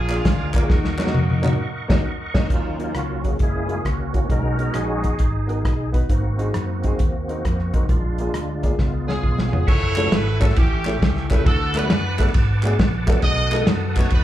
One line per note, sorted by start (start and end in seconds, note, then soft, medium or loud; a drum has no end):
0.00 0.19 A#1 loud
0.00 0.50 A#2 medium
0.00 0.16 D4 medium
0.00 0.16 F4 medium
0.00 0.18 G#4 loud
0.00 2.47 A#4 medium
0.00 0.69 F5 medium
0.00 0.69 G#5 medium
0.00 0.69 D6 medium
0.08 0.17 A#3 medium
0.08 0.17 D4 medium
0.08 0.18 F4 medium
0.08 0.18 G#4 medium
0.08 clap medium
0.08 closed hi-hat medium
0.17 0.66 G#3 medium
0.17 0.66 D4 medium
0.17 0.55 F4 loud
0.25 0.63 D2 loud
0.25 kick medium
0.25 snare loud
0.25 closed hi-hat medium
0.53 0.58 A#3 medium
0.53 2.01 A#3 medium
0.53 0.58 D4 medium
0.53 2.05 D#4 medium
0.53 0.59 F4 medium
0.53 2.01 F#4 medium
0.53 0.59 A#4 medium
0.53 kick loud
0.53 clap medium
0.53 closed hi-hat medium
0.61 0.69 A#3 medium
0.61 0.69 D4 medium
0.61 0.70 F4 medium
0.61 0.70 G#4 medium
0.69 1.08 D#2 loud
0.69 1.40 D#3 medium
0.69 2.47 D#5 medium
0.69 2.47 F#5 medium
0.69 2.47 C#6 medium
0.69 kick loud
0.69 snare medium
0.84 snare medium
0.98 1.03 A#3 medium
0.98 1.03 C#4 medium
0.98 1.03 D#4 medium
0.98 1.04 F#4 medium
0.98 snare medium
0.98 clap medium
1.05 1.15 A#3 medium
1.05 1.15 C#4 medium
1.05 1.15 D#4 medium
1.05 1.15 F#4 medium
1.05 snare medium
1.14 1.53 F2 medium
1.14 high tom medium
1.30 high tom medium
1.42 1.51 A#3 medium
1.42 1.52 C#4 medium
1.42 1.52 D#4 medium
1.42 1.52 F#4 loud
1.42 clap medium
1.42 high tom medium
1.53 mid tom medium
1.88 2.00 D#2 loud
1.88 1.99 A#3 loud
1.88 2.00 C#4 medium
1.88 2.00 D#4 medium
1.88 2.00 F#4 medium
1.88 kick loud
1.88 snare loud
1.88 crash medium
2.34 2.45 D#2 medium
2.34 2.45 A#3 medium
2.34 2.45 C#4 loud
2.34 2.45 D#4 loud
2.34 kick loud
2.34 snare loud
2.34 crash medium
2.49 2.88 D#2 medium
2.49 3.20 D#3 medium
2.49 3.36 F#3 medium
2.49 2.95 A#3 soft
2.49 2.95 C#4 soft
2.49 2.96 D#4 medium
2.49 3.21 F4 medium
2.49 kick loud
2.49 closed hi-hat medium
2.78 2.87 A#3 medium
2.78 2.87 C#4 medium
2.78 2.87 D#4 medium
2.78 2.88 F#4 medium
2.78 closed hi-hat medium
2.95 3.33 C#2 medium
2.95 3.37 A#3 soft
2.95 3.37 C#4 soft
2.95 3.37 F#4 medium
2.95 cross-stick loud
2.95 closed hi-hat medium
3.23 3.32 A#3 medium
3.23 3.32 C#4 medium
3.23 3.33 D#4 medium
3.23 3.33 G#4 medium
3.23 kick medium
3.23 closed hi-hat medium
3.39 3.78 F#1 medium
3.39 3.75 G#3 soft
3.39 3.75 A#3 soft
3.39 3.76 E4 soft
3.39 3.87 G#4 medium
3.39 kick loud
3.39 closed hi-hat medium
3.43 3.86 C#4 medium
3.67 3.76 A#3 medium
3.67 3.77 C#4 medium
3.67 3.77 E4 soft
3.67 3.77 F#4 medium
3.67 closed hi-hat medium
3.85 4.23 C#2 medium
3.85 4.28 A#3 medium
3.85 4.28 C#4 medium
3.85 4.31 F#4 medium
3.85 kick medium
3.85 cross-stick loud
3.85 closed hi-hat medium
4.13 4.22 A#3 medium
4.13 4.22 C#4 medium
4.13 4.23 E4 medium
4.13 4.23 F#4 medium
4.13 kick medium
4.13 closed hi-hat medium
4.28 4.68 B1 medium
4.28 5.00 B2 medium
4.28 5.01 G#3 medium
4.28 5.01 C#4 soft
4.28 4.73 D#4 medium
4.28 5.17 F#4 medium
4.28 4.77 A#4 loud
4.28 kick loud
4.28 closed hi-hat medium
4.57 4.66 B3 medium
4.57 4.67 D#4 medium
4.57 4.67 F#4 medium
4.57 4.67 G#4 medium
4.57 closed hi-hat medium
4.73 5.13 A#1 medium
4.73 5.90 D#4 soft
4.73 5.90 G#4 medium
4.73 cross-stick medium
4.73 closed hi-hat medium
5.02 5.11 B3 medium
5.02 5.12 D#4 medium
5.02 5.12 F#4 medium
5.02 5.12 G#4 medium
5.02 kick medium
5.02 closed hi-hat medium
5.19 5.65 G#1 medium
5.19 kick medium
5.19 closed hi-hat medium
5.47 5.56 B3 medium
5.47 5.57 D#4 medium
5.47 5.57 F#4 medium
5.47 5.57 A#4 medium
5.47 closed hi-hat medium
5.65 6.03 B1 medium
5.65 kick medium
5.65 cross-stick loud
5.65 closed hi-hat medium
5.92 6.01 B3 medium
5.92 6.02 D#4 medium
5.92 6.02 F#4 medium
5.92 6.02 B4 medium
5.92 kick medium
5.92 closed hi-hat medium
6.09 6.48 G#1 medium
6.09 6.80 G#2 medium
6.09 7.85 A#3 medium
6.09 7.86 C4 soft
6.09 7.86 F#4 medium
6.09 kick medium
6.09 closed hi-hat medium
6.38 6.47 C4 medium
6.38 6.47 D#4 medium
6.38 6.48 F#4 medium
6.38 6.48 G#4 medium
6.38 closed hi-hat medium
6.54 6.93 F#2 medium
6.54 cross-stick loud
6.54 closed hi-hat medium
6.84 6.92 C4 medium
6.84 6.92 D#4 medium
6.84 6.93 F#4 medium
6.84 6.93 G#4 medium
6.84 kick medium
6.84 closed hi-hat medium
6.99 7.38 D#2 medium
6.99 kick medium
6.99 closed hi-hat medium
7.28 7.37 C4 medium
7.28 7.37 D#4 medium
7.28 7.37 F#4 medium
7.28 7.38 A#4 medium
7.28 closed hi-hat medium
7.45 7.70 F2 medium
7.45 kick medium
7.45 cross-stick medium
7.45 closed hi-hat medium
7.59 cross-stick soft
7.73 7.87 A1 medium
7.73 7.82 C4 medium
7.73 7.82 D#4 medium
7.73 7.83 F#4 medium
7.73 7.83 A#4 medium
7.73 kick medium
7.73 closed hi-hat medium
7.89 8.27 A#1 medium
7.89 8.60 A#2 medium
7.89 8.75 G#3 soft
7.89 8.75 D4 soft
7.89 8.75 F4 soft
7.89 kick loud
7.89 closed hi-hat medium
8.18 8.27 A#3 medium
8.18 8.27 D4 medium
8.18 8.28 F4 medium
8.18 8.28 G#4 medium
8.18 closed hi-hat medium
8.34 8.72 D2 medium
8.34 cross-stick loud
8.34 closed hi-hat medium
8.62 8.71 A#3 medium
8.62 8.71 D4 medium
8.62 8.72 F4 medium
8.62 8.72 G#4 medium
8.62 kick medium
8.62 closed hi-hat medium
8.79 9.17 C#2 medium
8.79 9.49 C#3 medium
8.79 9.50 G#3 soft
8.79 9.50 B3 soft
8.79 9.50 F4 soft
8.79 kick medium
8.79 snare medium
9.07 9.16 B3 medium
9.07 9.64 B3 medium
9.07 9.16 C#4 medium
9.07 9.64 F4 medium
9.07 9.17 F4 medium
9.07 9.64 G#4 medium
9.07 9.17 G#4 medium
9.07 snare medium
9.23 9.49 B1 medium
9.23 kick medium
9.23 mid tom medium
9.38 snare medium
9.52 9.66 F1 medium
9.52 9.61 B3 medium
9.52 9.61 C#4 medium
9.52 9.61 F4 medium
9.52 9.62 G#4 medium
9.52 floor tom medium
9.67 10.06 F#1 loud
9.67 10.53 E4 medium
9.67 11.44 A4 medium
9.67 10.41 A4 medium
9.67 10.12 C#5 loud
9.67 11.43 E5 medium
9.67 10.56 F#5 medium
9.67 11.44 C#6 medium
9.67 kick loud
9.67 crash loud
9.96 10.01 A3 medium
9.96 10.01 C#4 medium
9.96 10.01 E4 medium
9.96 10.02 F#4 medium
9.96 10.02 A4 medium
9.96 clap medium
9.96 ride medium
10.04 10.13 A3 medium
10.04 10.13 C#4 medium
10.04 10.13 E4 medium
10.04 10.14 F#4 medium
10.04 10.14 B4 medium
10.12 10.50 G#1 medium
10.12 10.42 B4 loud
10.12 snare loud
10.12 ride medium
10.40 10.49 A3 medium
10.40 10.49 C#4 medium
10.40 10.49 E4 medium
10.40 10.50 F#4 medium
10.40 10.57 A4 loud
10.40 10.50 A4 medium
10.40 kick medium
10.40 clap medium
10.40 ride medium
10.49 snare soft
10.56 10.95 A1 loud
10.56 11.27 A2 medium
10.56 11.42 C#4 medium
10.56 11.42 E4 medium
10.56 11.01 G4 medium
10.56 11.44 G5 medium
10.56 kick loud
10.56 ride medium
10.85 10.94 A3 medium
10.85 10.94 C#4 medium
10.85 10.94 E4 medium
10.85 10.95 G4 medium
10.85 10.95 A4 medium
10.85 clap medium
10.85 ride medium
11.02 11.39 C#2 loud
11.02 11.29 G4 medium
11.02 kick medium
11.02 snare loud
11.02 ride medium
11.17 snare soft
11.31 11.35 A3 medium
11.31 11.35 C#4 medium
11.31 11.35 E4 medium
11.31 11.35 G4 medium
11.31 11.35 A4 medium
11.31 11.47 B4 medium
11.31 kick loud
11.31 clap medium
11.31 ride medium
11.39 11.46 A3 medium
11.39 11.46 C#4 medium
11.39 11.47 E4 medium
11.39 11.47 G4 medium
11.39 11.47 A4 medium
11.46 11.91 D2 loud
11.46 12.16 D3 medium
11.46 11.75 F#4 medium
11.46 11.75 A4 loud
11.46 14.24 B4 medium
11.46 14.24 F#5 medium
11.46 14.24 A5 medium
11.46 13.22 D6 medium
11.46 kick loud
11.46 ride medium
11.75 11.79 A3 medium
11.75 11.79 B3 medium
11.75 11.79 D4 medium
11.75 12.60 F#4 medium
11.75 11.80 F#4 medium
11.75 11.80 A4 medium
11.75 12.35 B4 medium
11.75 clap loud
11.75 ride medium
11.83 11.91 A3 medium
11.83 11.91 B3 medium
11.83 11.92 D4 medium
11.83 11.92 F#4 medium
11.83 11.92 B4 medium
11.90 12.28 F#2 medium
11.90 snare loud
11.90 ride medium
12.18 12.27 A3 medium
12.18 12.27 B3 medium
12.18 12.28 D4 medium
12.18 12.28 F#4 medium
12.18 12.28 A4 medium
12.18 kick medium
12.18 clap medium
12.18 ride medium
12.27 snare soft
12.34 12.73 G#2 loud
12.34 kick loud
12.34 ride medium
12.63 12.71 A3 medium
12.63 12.72 B3 medium
12.63 12.72 D4 medium
12.63 12.72 F#4 medium
12.63 12.72 G#4 loud
12.63 clap medium
12.63 ride medium
12.79 13.17 A#1 loud
12.79 kick medium
12.79 snare loud
12.79 ride medium
13.07 13.11 A3 medium
13.07 13.12 B3 medium
13.07 13.12 D4 medium
13.07 13.12 F#4 medium
13.07 13.13 A4 loud
13.07 kick loud
13.07 clap loud
13.07 ride medium
13.15 13.23 A3 medium
13.15 13.23 B3 medium
13.15 13.23 D4 medium
13.15 13.24 F#4 medium
13.22 13.61 B1 loud
13.22 13.93 B2 medium
13.22 14.08 F#4 medium
13.22 14.08 A4 loud
13.22 13.65 D#5 loud
13.22 14.24 D#6 medium
13.22 kick loud
13.22 ride medium
13.51 13.56 A3 medium
13.51 13.56 B3 medium
13.51 13.56 D#4 medium
13.51 13.57 F#4 medium
13.51 13.57 A4 medium
13.51 clap loud
13.51 ride medium
13.59 13.68 A3 medium
13.59 13.68 B3 medium
13.59 13.68 D#4 medium
13.59 13.69 F#4 medium
13.59 13.69 A4 medium
13.66 14.05 F#2 loud
13.66 snare loud
13.66 ride medium
13.95 14.04 A3 medium
13.95 14.05 B3 medium
13.95 14.05 D#4 medium
13.95 14.05 F#4 medium
13.95 14.05 B4 medium
13.95 14.11 C#5 medium
13.95 kick medium
13.95 clap medium
13.95 ride medium
14.03 snare soft
14.10 14.24 D#2 loud
14.10 14.24 D#4 medium
14.10 14.24 F#4 medium
14.10 14.24 B4 loud
14.10 kick loud
14.10 ride medium